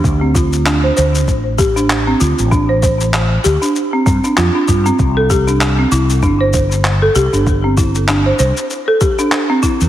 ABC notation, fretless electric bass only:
X:1
M:4/4
L:1/16
Q:"Swing 16ths" 1/4=97
K:Dm
V:1 name="Fretless electric bass" clef=bass
D,,4- D,, z D,,2 A,,,4- A,,, z D,, A,,,- | A,,,4- A,,, z D,, z3 G,, z F,, z G,, z | C,,4- C,, z C,,2 G,,,4- G,,, z C,, G,,,- | G,,,4- G,,, z C,, z8 E,, |]